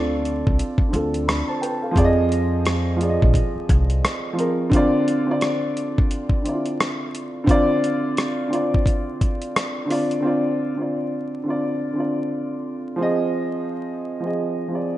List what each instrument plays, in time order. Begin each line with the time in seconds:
Already playing: upright bass D2, upright piano D3 C4 F4 A4 D5
0.25 closed hi-hat
0.47 upright bass C2, kick
0.59 closed hi-hat
0.78 muted upright bass stroke, kick
0.89 upright piano D3 C4
0.93 upright bass D2, upright piano F4 A4, closed hi-hat
1.14 closed hi-hat
1.28 upright piano D5 B5, cross-stick, closed hi-hat
1.48 upright piano C5 A5
1.61 upright piano B4 G5, closed hi-hat
1.82 upright piano A4 F5
1.91 upright piano F3 C4
1.96 upright bass F2, upright piano G#4 D5, kick, closed hi-hat
2.04 upright piano D#5
2.32 closed hi-hat
2.65 cross-stick, closed hi-hat
2.96 upright piano F3 C4
3.01 upright piano G#4 D5, closed hi-hat
3.09 upright piano D#5
3.22 upright bass A#1, kick
3.34 kick, closed hi-hat
3.55 muted upright bass stroke
3.69 upright bass C2, kick, closed hi-hat
3.90 closed hi-hat
4.05 cross-stick, closed hi-hat
4.33 upright piano F3 C4
4.37 upright piano G#4 A#4, closed hi-hat
4.70 upright piano D3 C4, kick, closed hi-hat
4.74 upright piano F4 D5
5.08 closed hi-hat
5.24 upright piano D3 C4
5.29 upright piano F4 D5
5.41 cross-stick, closed hi-hat
5.77 closed hi-hat
5.98 kick
6.11 closed hi-hat
6.29 kick
6.42 upright piano D3 C4, closed hi-hat
6.46 upright piano E4 D5
6.53 upright piano F4
6.66 closed hi-hat
6.80 cross-stick, closed hi-hat
7.15 closed hi-hat
7.44 upright piano D3 C4, kick
7.48 upright piano F4 D5, closed hi-hat
7.84 closed hi-hat
8.17 cross-stick, closed hi-hat
8.48 upright piano D3 C4
8.52 upright piano F4 D5, closed hi-hat
8.74 kick
8.86 kick, closed hi-hat
9.21 kick, closed hi-hat
9.42 closed hi-hat
9.56 cross-stick, closed hi-hat
9.85 upright piano D3 C4
9.90 upright piano F4 D5, cross-stick, open hi-hat
10.11 closed hi-hat
10.20 upright piano D3 C4
10.25 upright piano F4 D5
10.75 upright piano D3 C4
10.80 upright piano F4 D5
11.43 upright piano D3 C4
11.48 upright piano F4 D5
11.93 upright piano D3 C4
11.98 upright piano F4 D5
12.96 upright piano F3 C4
13.00 upright piano G#4 D#5
14.20 upright piano F3 C4
14.25 upright piano G#4 D#5
14.68 upright piano F3 C4
14.73 upright piano G#4 D5